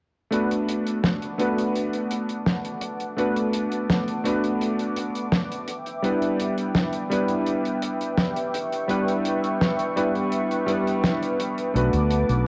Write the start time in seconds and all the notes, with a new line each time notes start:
0.31 A3 B3 D4 F#4 B4 F#5 A5 D6, closed hi-hat
0.51 closed hi-hat
0.69 closed hi-hat
0.87 closed hi-hat
1.04 snare, closed hi-hat
1.22 closed hi-hat
1.38 A3 B3 D4 F#4 B4, closed hi-hat
1.58 closed hi-hat
1.75 closed hi-hat
1.93 closed hi-hat
2.11 closed hi-hat
2.29 closed hi-hat
2.46 snare, closed hi-hat
2.65 closed hi-hat
2.81 closed hi-hat
3.00 closed hi-hat
3.17 A3 B3 D4 F#4 B4, closed hi-hat
3.36 closed hi-hat
3.53 closed hi-hat
3.71 closed hi-hat
3.89 snare, closed hi-hat
4.08 closed hi-hat
4.24 A3 B3 D4 F#4 B4, closed hi-hat
4.44 closed hi-hat
4.61 closed hi-hat
4.79 closed hi-hat
4.97 closed hi-hat
5.15 closed hi-hat
5.32 snare, closed hi-hat
5.52 closed hi-hat
5.68 E5 G5, closed hi-hat
5.86 closed hi-hat
6.02 G3 B3 D4 E4 B4, closed hi-hat
6.22 closed hi-hat
6.40 closed hi-hat
6.58 closed hi-hat
6.75 snare, closed hi-hat
6.93 closed hi-hat
7.10 G3 B3 D4 E4 B4, closed hi-hat
7.28 closed hi-hat
7.46 closed hi-hat
7.65 closed hi-hat
7.82 closed hi-hat
8.01 closed hi-hat
8.18 snare, closed hi-hat
8.37 closed hi-hat
8.54 C#6, closed hi-hat
8.73 closed hi-hat
8.88 G3 B3 D4 E4 B4, closed hi-hat
9.08 closed hi-hat
9.25 closed hi-hat
9.44 closed hi-hat
9.61 snare, closed hi-hat
9.79 closed hi-hat
9.96 G3 B3 D4 E4 B4, closed hi-hat
10.16 closed hi-hat
10.32 closed hi-hat
10.51 closed hi-hat
10.66 G3 B3 D4 E4 B4, closed hi-hat
10.87 closed hi-hat
11.04 snare, closed hi-hat
11.22 closed hi-hat
11.40 closed hi-hat
11.58 closed hi-hat
11.74 B1 A3 B3 D4 F#4 B4 F#5 A5 D6, closed hi-hat
11.93 D2, closed hi-hat
12.11 closed hi-hat
12.29 B1, closed hi-hat